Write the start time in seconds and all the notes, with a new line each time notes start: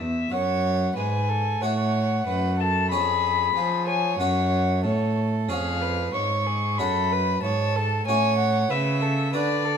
Already playing: F#4 C#5
0.00 E2 E5
0.32 F#2 C#5 F#5
0.96 G#2 B4 G#5
1.29 A4
1.61 A2 A3 F#4 C#5 F#5
2.27 F#2 B4
2.59 A4 A5
2.90 F2 C#4 G#4 C#5 B5
3.55 F3 G#4
3.87 C#5 G#5
4.20 F#2 C#4 A4 C#5 F#5
4.84 A2 A4 C#5
5.49 F2 C#4 G#4 C#5 F5
5.82 B4
6.14 G#2 C#5 C#6
6.46 G#4
6.78 F#2 C#4 F#4 A4 C#5 B5
7.12 B4
7.43 G#2 C#5 A5
7.76 A4
8.07 A2 C#4 F#4 C#5 G#5
8.38 F#5
8.70 C#3 B4 E5
9.01 A4
9.33 D3 D4 F#4 B4 D5
9.65 A4